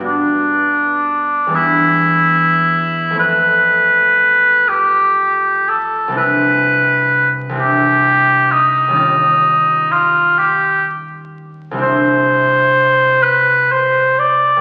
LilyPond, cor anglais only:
\new Staff \with { instrumentName = "Cor anglais" } { \time 6/8 \key c \lydian \tempo 4. = 42 d'4. e'4. | b'4. g'4 a'8 | b'4 r8 g'4 ees'8~ | ees'4 f'8 g'8 r4 |
c''4. b'8 c''8 d''8 | }